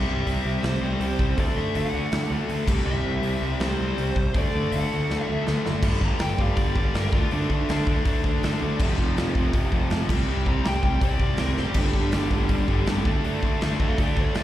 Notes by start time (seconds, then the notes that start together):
Already playing: C3 G3 C4 E5
0.08 C2
0.26 C2, open hi-hat
0.45 C2
0.63 C2, snare, open hi-hat
0.68 C5
0.82 C2 C3 G3 C4
0.99 C2 C3 G3 C4, open hi-hat
1.19 C2, kick
1.37 D2 D3 A3 D4 D5, kick, open hi-hat
1.56 D2 E5
1.75 D2 F#5, open hi-hat
1.94 D2
2.12 D2, snare, open hi-hat
2.31 D2 D3 A3 D4
2.49 D2 D3 A3 D4, open hi-hat
2.67 C2 C3 G3 C4, kick, crash
2.86 C2 E5
3.06 C2
3.22 C2, open hi-hat
3.42 C2
3.60 C2 C3 G3 C4 C5, snare, open hi-hat
3.80 C2 C3 G3 C4
3.98 C2, open hi-hat
4.16 C2, kick
4.34 D2 D3 A3 D4 D5, kick, open hi-hat
4.55 D2
4.72 D2 F#5, open hi-hat
4.94 D2
5.10 D2, snare
5.24 D4 E5
5.28 D2 D3 A3
5.46 D2 D3 A3 D4, snare
5.66 F#1, snare
5.83 G1 G2 D3 G3, kick, crash
6.00 G1 G2 D3 G3, kick
6.06 A#5
6.19 G1 G2 D3 G3 G5, snare, open hi-hat
6.37 G1 G2 D3 G3 F5, kick
6.57 G1 G2 D3 G3 D5, kick, open hi-hat
6.75 G1 G2 D3 G3, kick
6.94 G1 G2 D3 G3 A#4, snare, open hi-hat
7.13 D2 D3 A3 D4 F4, kick
7.31 D2 D3 A3 D4, open hi-hat
7.50 D2 D3 A3 D4, kick
7.69 D2 D3 A3 D4, snare, open hi-hat
7.86 D2 D3 A3 D4, kick
8.05 D2 D3 A3 D4, kick, open hi-hat
8.24 D2 D3 A3 D4, kick
8.43 D2 D3 A3 D4, snare, open hi-hat
8.62 D2 D3 A3 D4
8.79 F1 F2 C3 F3, kick, crash
8.83 F2
8.98 F1 F2 C3 F3, kick
9.16 F1 F2 C3 F3, snare, open hi-hat
9.35 F1 F2 C3 F3, kick
9.53 F1 F2 C3 F3, kick, open hi-hat
9.72 F1 F2 C3 F3, kick
9.90 F1 F2 C3 F3, snare, open hi-hat
10.09 C2 C3 G3 C4, kick, crash
10.28 C2 C3 G3 C4
10.46 C2 C3 G3 C4 A#5, kick
10.65 C2 C3 G3 C4 G5, snare, open hi-hat
10.83 C2 C3 G3 C4 G5, kick
11.01 C2 C3 G3 C4 D5, kick, open hi-hat
11.19 C2 C3 G3 C4, kick
11.37 C2 C3 G3 C4 A#4, snare, open hi-hat
11.57 F#1 C3 G3 C4 G4, snare
11.74 G1 G2 D3 G3 D4, kick, crash
11.94 G1 G2 D3 G3 D4, kick
12.12 G1 G2 D3 G3, snare, open hi-hat
12.30 G1 G2 D3 G3, kick
12.49 G1 G2 D3 G3, kick, open hi-hat
12.68 G1 G2 D3 G3, kick
12.87 G1 G2 D3 G3, snare, open hi-hat
13.05 D2 D3 A3 D4, kick
13.24 D2 D3 A3 D4, open hi-hat
13.43 D2 D3 A3 D4, kick
13.61 D2 D3 A3 D4, snare, open hi-hat
13.80 D2 D3 A3 D4 A4 F5, kick
13.98 D2 D3 A3 D4 F#4, kick, open hi-hat
14.03 D5
14.17 D2 D3 A3 D4 D5, kick
14.35 D2 D3 A3 D4, snare, open hi-hat